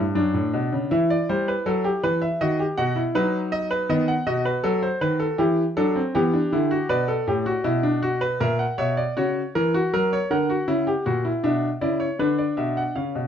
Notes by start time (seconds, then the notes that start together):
Already playing: G2
0.15 F#2 D4
0.34 A2
0.53 B2
0.73 C#3
0.91 E3 E4 E5
1.10 D5
1.29 G3 C5
1.48 B4
1.66 F#3 A4
1.84 G4
2.03 E3 B4
2.22 E5
2.41 D#3 F#4 D#5
2.59 G4
2.78 B2 F#4 F#5
2.96 E4
3.15 F#3 D#4 B4
3.52 D#5
3.71 B4
3.89 D#3 B3 D#5
4.08 F#5
4.27 B2 F#4 D#5
4.45 B4
4.64 F#3 A4
4.83 C5
5.01 D#3 B4
5.20 A4
5.38 E3 E4 G4
5.77 F#3 D4 A4
5.95 C4
6.15 E3 B3 G4
6.33 D4
6.52 D3 E4
6.71 F#4
6.89 B2 B4 D5
7.08 A4
7.28 A2 G4
7.46 F#4
7.64 B2 E4
7.83 D4
8.02 F#4
8.21 B4
8.40 A#2 A#4 E5
8.59 F#5
8.78 B2 C#5 E5
8.97 D5
9.17 C#3 F#4 C#5
9.55 E3 A#4
9.74 F#4
9.93 F#3 A#4
10.13 C#5
10.30 D3 A#4 F#5
10.50 F#4
10.68 C#3 E4
10.87 G4
11.06 A#2 F#4
11.25 E4
11.44 B2 D4 E5
11.81 C#3 E4 D5
12.00 C#5
12.19 D3 D4 B4
12.38 D5
12.57 B2 E5
12.77 F#5
12.96 C#3 C#4 F5
13.15 B2